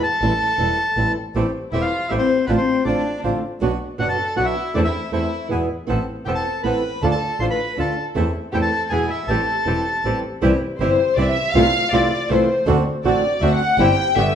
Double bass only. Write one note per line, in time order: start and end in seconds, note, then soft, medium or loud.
0.22 0.37 A1 medium
0.59 0.75 E1 soft
0.97 1.13 A1 soft
1.35 1.51 A1 medium
1.73 1.89 E1 soft
2.12 2.27 A1 soft
2.48 2.64 A1 medium
2.86 3.02 A1 soft
3.23 3.39 A1 soft
3.61 3.77 B1 medium
3.99 4.15 F#1 soft
4.38 4.53 B1 soft
4.76 4.91 E2 medium
5.12 5.29 E2 soft
5.52 5.67 E2 soft
5.89 6.05 A1 medium
6.28 6.43 E1 soft
6.65 6.80 A1 soft
7.02 7.18 D2 medium
7.40 7.56 A1 soft
7.78 7.94 D2 soft
8.16 8.31 E2 medium
8.53 8.69 E2 soft
8.91 9.07 E2 soft
9.28 9.44 A1 medium
9.67 9.82 E1 soft
10.04 10.20 A1 soft
10.43 10.58 C2 medium
10.80 10.96 G1 medium
11.17 11.33 C2 medium
11.55 11.71 C2 medium
11.92 12.08 C2 medium
12.30 12.46 C2 medium
12.66 12.83 D2 medium
13.04 13.20 A1 medium
13.41 13.57 D2 medium
13.78 13.94 G1 medium
14.17 14.32 G1 medium